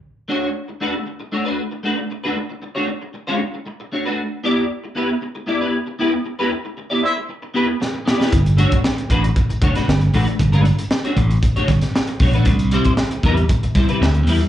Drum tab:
HH |----------------|----------------|----------------|----------------|
SD |----------------|----------------|----------------|------------o-oo|
BD |----------------|----------------|----------------|----------------|

HH |xxxx-xxxxxxx-xox|xxxx-xxxxxxx-xox|xxxx-xxxxxxx-xox|
SD |----o------oo---|----o-----ooo---|----o-----o-o---|
BD |o--o--o-o-o-----|o-----o-o-o---o-|o--o--o-o-o-----|